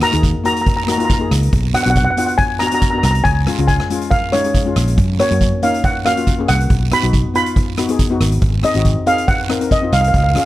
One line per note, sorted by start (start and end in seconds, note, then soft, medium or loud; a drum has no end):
0.00 0.08 A#3 medium
0.00 0.08 D#4 medium
0.00 0.09 F#4 medium
0.00 0.42 A#5 loud
0.00 cross-stick medium
0.00 closed hi-hat medium
0.12 0.34 D#2 medium
0.12 0.32 A#3 medium
0.12 0.32 D#4 medium
0.12 0.33 G#4 medium
0.12 closed hi-hat medium
0.23 kick medium
0.23 closed hi-hat medium
0.23 short guiro medium
0.44 0.70 A#3 medium
0.44 0.71 D#4 medium
0.44 0.71 F#4 medium
0.44 0.52 A#5 medium
0.44 closed hi-hat medium
0.54 0.60 A#5 medium
0.54 closed hi-hat medium
0.61 0.67 A#5 medium
0.66 0.75 A#5 medium
0.66 kick medium
0.66 closed hi-hat soft
0.66 long guiro medium
0.77 0.83 A#5 medium
0.84 0.94 A#3 medium
0.84 0.95 D#4 medium
0.84 0.90 A#5 soft
0.88 0.95 F#4 medium
0.88 0.97 A#5 medium
0.88 cross-stick medium
0.88 closed hi-hat medium
0.88 short guiro medium
0.97 1.11 A#3 medium
0.97 1.12 D#4 medium
0.97 1.12 F4 medium
0.97 1.04 A#5 medium
0.97 closed hi-hat medium
1.05 1.12 A#5 medium
1.10 1.21 A#5 medium
1.10 kick medium
1.10 closed hi-hat medium
1.10 short guiro medium
1.19 1.52 A#3 medium
1.19 1.52 D#4 medium
1.19 1.53 G#4 medium
1.31 1.52 C#2 medium
1.31 cross-stick medium
1.31 closed hi-hat medium
1.31 short guiro medium
1.43 closed hi-hat medium
1.53 1.73 B1 medium
1.53 kick loud
1.53 closed hi-hat medium
1.53 long guiro medium
1.73 1.81 B3 medium
1.73 1.81 D4 medium
1.73 1.82 F#4 medium
1.73 1.82 F#5 medium
1.73 cross-stick medium
1.73 closed hi-hat medium
1.83 2.06 B1 medium
1.83 2.05 B3 medium
1.83 2.05 D4 medium
1.83 2.06 F#4 medium
1.83 1.89 F#5 medium
1.83 closed hi-hat medium
1.90 1.96 F#5 medium
1.96 2.03 F#5 medium
1.96 kick medium
1.96 closed hi-hat medium
1.96 short guiro medium
2.04 2.09 F#5 medium
2.11 2.17 F#5 medium
2.17 2.43 B3 medium
2.17 2.44 D4 medium
2.17 2.44 F4 medium
2.17 2.25 F#5 medium
2.17 closed hi-hat medium
2.26 2.35 F#5 medium
2.26 closed hi-hat medium
2.38 2.61 G#5 medium
2.38 kick medium
2.38 closed hi-hat medium
2.38 long guiro medium
2.59 2.67 B3 medium
2.59 2.68 D4 medium
2.59 2.68 F#4 medium
2.59 2.66 A#5 medium
2.59 cross-stick medium
2.59 closed hi-hat medium
2.59 short guiro medium
2.67 2.73 A#5 medium
2.71 2.84 B3 medium
2.71 2.85 D4 medium
2.71 2.85 F#4 medium
2.71 2.80 A#5 medium
2.71 closed hi-hat medium
2.82 2.89 A#5 medium
2.82 kick medium
2.82 closed hi-hat medium
2.82 short guiro medium
2.90 3.25 B3 medium
2.90 3.25 D4 medium
2.90 2.97 A#5 medium
2.95 3.26 F#4 medium
2.95 3.04 A#5 medium
3.03 3.24 C2 medium
3.03 3.10 A#5 medium
3.03 cross-stick medium
3.03 closed hi-hat medium
3.03 short guiro medium
3.11 3.20 A#5 medium
3.11 closed hi-hat medium
3.24 3.46 C#2 medium
3.24 3.66 G#5 loud
3.24 kick loud
3.24 closed hi-hat medium
3.24 long guiro medium
3.46 3.53 G#3 medium
3.46 3.54 C#4 medium
3.46 3.54 F4 medium
3.46 cross-stick medium
3.46 closed hi-hat medium
3.58 3.79 C#2 medium
3.58 3.77 G#3 medium
3.58 3.78 C#4 medium
3.58 3.79 F4 medium
3.58 closed hi-hat medium
3.68 4.12 G#5 medium
3.68 kick medium
3.68 closed hi-hat medium
3.68 short guiro medium
3.80 cross-stick medium
3.90 4.16 G#3 medium
3.90 4.16 C#4 medium
3.90 4.17 F4 medium
3.90 closed hi-hat medium
4.01 closed hi-hat medium
4.11 4.33 F5 medium
4.11 kick medium
4.11 closed hi-hat medium
4.11 long guiro medium
4.32 4.40 G#3 medium
4.32 4.40 C#4 medium
4.32 4.41 D#4 medium
4.32 4.73 C#5 medium
4.32 cross-stick medium
4.32 closed hi-hat medium
4.32 short guiro medium
4.44 4.57 G#3 medium
4.44 4.57 C#4 medium
4.44 4.58 G#4 medium
4.44 closed hi-hat medium
4.54 kick medium
4.54 closed hi-hat medium
4.54 short guiro medium
4.65 4.97 G#3 medium
4.65 4.98 C#4 medium
4.65 4.98 F4 medium
4.76 4.97 A#1 medium
4.76 cross-stick medium
4.76 closed hi-hat medium
4.76 short guiro medium
4.88 closed hi-hat medium
4.98 5.18 F#2 medium
4.98 kick loud
4.98 closed hi-hat medium
4.98 long guiro medium
5.19 5.26 A#3 medium
5.19 5.26 C#4 medium
5.19 5.27 F#4 medium
5.19 5.64 C#5 medium
5.19 cross-stick medium
5.19 closed hi-hat medium
5.30 5.51 F#2 medium
5.30 5.49 A#3 medium
5.30 5.50 C#4 medium
5.30 5.50 F#4 medium
5.30 closed hi-hat medium
5.41 kick medium
5.41 closed hi-hat medium
5.41 short guiro medium
5.62 5.88 A#3 medium
5.62 5.89 C#4 medium
5.62 5.89 D#4 medium
5.62 5.85 F5 medium
5.62 closed hi-hat medium
5.74 closed hi-hat medium
5.84 5.94 F#5 medium
5.84 kick medium
5.84 closed hi-hat medium
5.84 long guiro medium
6.05 6.12 A#3 medium
6.05 6.12 C#4 medium
6.05 6.13 F#4 medium
6.05 6.46 F5 medium
6.05 cross-stick medium
6.05 closed hi-hat medium
6.05 short guiro medium
6.16 6.29 A#3 medium
6.16 6.29 C#4 medium
6.16 6.30 F4 medium
6.16 closed hi-hat medium
6.27 kick medium
6.27 closed hi-hat medium
6.27 short guiro medium
6.38 6.70 A#3 medium
6.38 6.71 C#4 medium
6.38 6.71 G#4 medium
6.48 6.69 C2 medium
6.48 6.89 F#5 medium
6.48 cross-stick medium
6.48 closed hi-hat medium
6.48 short guiro medium
6.60 closed hi-hat medium
6.70 6.91 B1 medium
6.70 kick loud
6.70 closed hi-hat medium
6.70 long guiro medium
6.91 6.98 B3 medium
6.91 6.98 D#4 medium
6.91 6.99 F#4 medium
6.91 7.34 B5 medium
6.91 cross-stick medium
6.91 closed hi-hat medium
7.02 7.23 B1 medium
7.02 7.22 B3 medium
7.02 7.22 D#4 medium
7.02 7.23 F#4 medium
7.02 closed hi-hat medium
7.13 kick medium
7.13 closed hi-hat medium
7.13 short guiro medium
7.34 7.60 B3 medium
7.34 7.61 D#4 medium
7.34 7.61 F4 medium
7.34 8.17 B5 medium
7.34 closed hi-hat medium
7.46 closed hi-hat medium
7.56 kick medium
7.56 closed hi-hat medium
7.56 long guiro medium
7.77 7.84 B3 medium
7.77 7.85 D#4 medium
7.77 7.85 F#4 medium
7.77 cross-stick medium
7.77 closed hi-hat medium
7.77 short guiro medium
7.89 8.01 B3 medium
7.89 8.02 D#4 medium
7.89 8.02 G#4 medium
7.89 closed hi-hat medium
7.99 kick medium
7.99 closed hi-hat medium
7.99 short guiro medium
8.10 8.42 B3 medium
8.10 8.42 D#4 medium
8.10 8.43 F#4 medium
8.20 8.41 G#1 medium
8.20 cross-stick medium
8.20 closed hi-hat medium
8.20 short guiro medium
8.32 closed hi-hat medium
8.42 8.63 G#1 medium
8.42 kick loud
8.42 closed hi-hat medium
8.42 long guiro medium
8.63 8.70 C4 medium
8.63 8.70 D#4 medium
8.63 8.71 G#4 medium
8.63 9.04 D#5 medium
8.63 cross-stick medium
8.63 closed hi-hat medium
8.74 8.95 G#1 medium
8.74 8.94 C4 medium
8.74 8.94 D#4 medium
8.74 8.95 F#4 medium
8.74 closed hi-hat medium
8.85 kick medium
8.85 closed hi-hat medium
8.85 short guiro medium
9.06 9.32 C4 medium
9.06 9.33 D#4 medium
9.06 9.33 G#4 medium
9.06 9.29 F5 medium
9.06 closed hi-hat medium
9.18 closed hi-hat medium
9.28 9.72 F#5 medium
9.28 kick loud
9.28 closed hi-hat medium
9.28 long guiro medium
9.49 9.56 C4 medium
9.49 9.56 D#4 medium
9.49 9.57 A#4 medium
9.49 cross-stick medium
9.49 closed hi-hat medium
9.49 short guiro medium
9.60 9.73 C4 medium
9.60 9.73 D#4 medium
9.60 9.74 A#4 medium
9.60 closed hi-hat medium
9.71 9.94 D#5 medium
9.71 kick medium
9.71 closed hi-hat medium
9.71 short guiro medium
9.82 10.14 C4 medium
9.82 10.14 D#4 medium
9.82 10.15 F4 medium
9.93 10.13 C2 medium
9.93 10.00 F5 medium
9.93 cross-stick medium
9.93 closed hi-hat medium
9.93 short guiro medium
10.01 10.07 F5 medium
10.01 closed hi-hat medium
10.08 10.15 F5 medium
10.14 10.35 C#2 medium
10.14 10.22 F5 medium
10.14 kick loud
10.14 closed hi-hat medium
10.14 long guiro medium
10.24 10.29 F5 medium
10.30 10.37 F5 medium
10.35 10.42 C#4 medium
10.35 10.43 F4 medium
10.35 10.43 G#4 medium
10.35 10.45 F5 medium
10.35 cross-stick medium
10.35 closed hi-hat medium